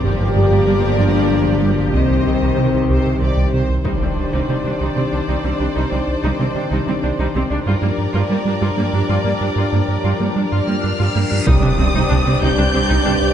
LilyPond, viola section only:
\new Staff \with { instrumentName = "Viola section" } { \clef bass \time 6/8 \key c \minor \tempo 4. = 63 << { g'2.~ | g'2~ g'8. r16 | ees'16 c'16 r16 ees'16 c'16 d'16 ees'16 c'16 d'16 ees'16 c'16 d'16 | ees'16 c'16 r16 ees'16 c'16 d'16 ees'16 c'16 d'16 ees'16 c'16 d'16 |
f'16 bes16 r16 f'16 bes16 d'16 f'16 bes16 d'16 f'16 bes16 d'16 | f'16 bes16 r16 f'16 bes16 d'16 f'16 bes16 d'16 f'16 bes16 d'16 | ees'16 d'16 c'16 ees'16 d'16 c'16 ees'16 d'16 c'16 ees'16 d'16 r16 | } \\ { f2. | ees2~ ees8. r16 | g16 g16 r16 g16 g16 g16 g16 g16 g16 g16 g16 g16 | g16 g16 r16 g16 g16 g16 g16 g16 g16 g16 g16 g16 |
g16 g16 r16 g16 g16 g16 g16 g16 g16 g16 g16 g16 | g16 g16 r16 g16 g16 g16 g16 g16 g16 g16 g16 g16 | g16 g16 g16 g16 g16 g16 g16 g16 g16 g16 g16 r16 | } >> }